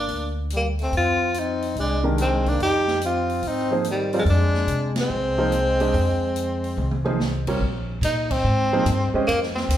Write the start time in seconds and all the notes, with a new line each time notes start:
Already playing: A#3 D4
0.08 D2, open hi-hat
0.50 G3, closed hi-hat
0.57 A#3
0.79 A3, open hi-hat
0.83 C4
0.92 F2 C4, open hi-hat
0.97 F4
1.34 C4, closed hi-hat
1.39 D#4
1.62 open hi-hat
1.76 C2 G#3, open hi-hat
1.80 D4
2.03 D#3 G#3 D4 G4 A#4
2.18 G#3 C4, closed hi-hat
2.46 A#3 D4, kick, open hi-hat
2.59 F2 G4, open hi-hat
2.63 D#4
2.88 snare
3.01 C4, closed hi-hat
3.06 F4
3.29 open hi-hat
3.42 G#2 C4, open hi-hat
3.48 D#4
3.71 F3 A#3 D#4 G#4 C5
3.84 D#3, closed hi-hat
3.91 G3
4.13 F3 G3 C4 F4 A#4 D5, open hi-hat
4.19 G#3
4.25 F2 G#3, open hi-hat
4.30 D4
4.54 snare
4.67 C3, closed hi-hat
4.96 G#3, snare, ride
5.01 C4
5.09 C2
5.38 F3 A#3 D#4 G#4 C5
5.52 closed hi-hat
5.80 G#3 D4 G4 C5 D#5, open hi-hat
5.94 F2, open hi-hat
6.36 closed hi-hat
6.64 open hi-hat
6.77 C2, mid tom
6.91 mid tom
7.04 F3 A#3 D#4 G#4 C5, mid tom
7.20 snare
7.47 G3 C4 F4 A#4 C#5, kick, crash
7.60 A#1
8.01 A#2 D#4, hi-hat pedal, ride
8.31 C4, kick, crash
8.44 G#2
8.73 F3 A#3 D#4 G#4 C5
8.86 G2, hi-hat pedal, ride
9.14 G#3 C#4 G4 C5 D#5, muted upright bass stroke
9.27 F2 A#3, ride
9.43 snare
9.56 C4, snare
9.69 D#2, hi-hat pedal, ride